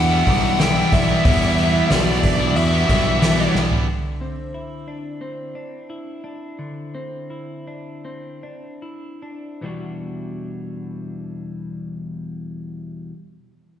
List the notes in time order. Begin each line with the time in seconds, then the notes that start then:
Already playing: E2 E3 G3 D4 F#4 E5 F#5 D6 E6
0.09 G3 B3 E4
0.26 B1 E3 G3 B3 E4, kick, open hi-hat
0.43 G3 B3 E4, muted overdriven electric guitar stroke
0.58 E3 G3 B3 E4 G5, snare, open hi-hat
0.75 G3 B3 E4
0.91 B1 E3 G3 B3 D4 E4 E5, kick, snare, open hi-hat
1.07 G3 B3 E4
1.23 E2 E3 G3 B3 E4, kick, open hi-hat
1.42 snare
1.56 E3 G3 B3 E4, open hi-hat
1.73 G3 B3 E4
1.89 B1 E3 G3 B3 E4 F#4 D5, snare, open hi-hat
2.22 E3 G3 B3 D4, muted distorted electric guitar stroke, kick, open hi-hat
2.26 E4
2.38 G3 B3 E4, muted overdriven electric guitar stroke
2.56 E2 F#4 E5, open hi-hat
2.72 G3 B3 E4
2.88 B1 E3 G3 B3 E4, kick, open hi-hat
3.04 G3 B3 E4, muted overdriven electric guitar stroke
3.20 E3 G3 B3 E4, snare, open hi-hat
3.37 G3 B3 E4
3.54 B1 E3 G3 B3 D4 E4, snare
3.71 G3 B3 E4, floor tom
3.88 D3
4.21 C4
4.54 E4
4.88 D4
5.21 C4
5.55 D4
5.90 E4
6.24 D4
6.59 D3
6.95 C4
7.30 E4
7.67 D4
8.05 C4
8.43 D4
8.82 E4
9.22 D4
9.61 E2 B2 E3 G3 D4
9.66 F#4